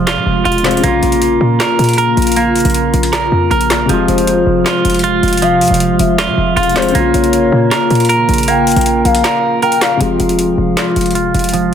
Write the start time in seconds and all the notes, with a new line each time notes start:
Already playing: F1 C3 F3 G#3 F4
0.07 F4, snare, clap, closed hi-hat
0.17 C3
0.26 F1
0.45 E1 F4 F5, closed hi-hat
0.52 closed hi-hat
0.58 closed hi-hat
0.63 C3 G#3 F4 C5, snare, clap, closed hi-hat
0.71 closed hi-hat
0.77 C#3, closed hi-hat
0.83 A#1 C#3 A#3 F4, closed hi-hat
1.03 A#1, closed hi-hat
1.12 closed hi-hat
1.22 closed hi-hat
1.41 A#2
1.60 A#4, snare, clap, closed hi-hat
1.79 A#2, closed hi-hat
1.84 closed hi-hat
1.89 closed hi-hat
1.93 closed hi-hat
1.98 A#4, closed hi-hat
2.17 A#1, closed hi-hat
2.22 closed hi-hat
2.27 closed hi-hat
2.32 closed hi-hat
2.36 A#3, closed hi-hat
2.56 closed hi-hat, open hi-hat
2.60 closed hi-hat
2.65 A#1, closed hi-hat
2.70 closed hi-hat
2.74 closed hi-hat
2.94 A#1, closed hi-hat
3.03 closed hi-hat
3.13 A#4, snare, clap, closed hi-hat
3.32 F2
3.51 A#1 A#4, closed hi-hat
3.61 closed hi-hat
3.70 snare, clap, closed hi-hat
3.86 F1 C3 F3 G#3, closed hi-hat
3.93 F4
4.08 F1 C5, closed hi-hat
4.18 closed hi-hat
4.27 closed hi-hat
4.47 F1
4.66 F4, snare, clap, closed hi-hat
4.85 F1, closed hi-hat
4.90 closed hi-hat
4.94 closed hi-hat
4.99 closed hi-hat
5.04 F4, closed hi-hat
5.23 F1, closed hi-hat
5.28 closed hi-hat
5.33 closed hi-hat
5.37 closed hi-hat
5.42 F3 F5, closed hi-hat
5.61 F2, closed hi-hat, open hi-hat
5.68 F1, closed hi-hat
5.74 closed hi-hat
5.80 closed hi-hat
5.90 G#1
5.99 F1 E5, closed hi-hat
6.19 F4, snare, clap, closed hi-hat
6.28 C3
6.38 F1
6.57 E1 F4 F5, closed hi-hat
6.63 closed hi-hat
6.69 closed hi-hat
6.74 C3 G#3 F4 C5, snare, clap, closed hi-hat
6.82 closed hi-hat
6.89 C#3, closed hi-hat
6.95 A#1 C#3 A#3 F4, closed hi-hat
7.14 A#1 C#5, closed hi-hat
7.24 closed hi-hat
7.33 closed hi-hat
7.52 A#2
7.71 A#4, snare, clap, closed hi-hat
7.91 A#2, closed hi-hat
7.95 closed hi-hat
8.00 closed hi-hat
8.05 closed hi-hat
8.09 A#4, closed hi-hat
8.29 A#1, closed hi-hat
8.34 closed hi-hat
8.38 closed hi-hat
8.43 closed hi-hat
8.48 A#3 G5, closed hi-hat
8.67 closed hi-hat, open hi-hat
8.72 closed hi-hat
8.76 A#1, closed hi-hat
8.81 closed hi-hat
8.86 closed hi-hat
9.05 A#1 F5, closed hi-hat
9.15 closed hi-hat
9.24 A#4, snare, clap, closed hi-hat
9.62 A#4 G5, closed hi-hat
9.72 closed hi-hat
9.81 F5, snare, clap, closed hi-hat
9.97 F1 C3 F3 G#3 F4, closed hi-hat
10.04 F4
10.20 F1, closed hi-hat
10.29 closed hi-hat
10.39 closed hi-hat
10.58 F1
10.77 F4, snare, clap, closed hi-hat
10.96 F1, closed hi-hat
11.01 closed hi-hat
11.06 closed hi-hat
11.11 closed hi-hat
11.15 F4, closed hi-hat
11.34 F1, closed hi-hat
11.39 closed hi-hat
11.44 closed hi-hat
11.49 closed hi-hat
11.54 F3, closed hi-hat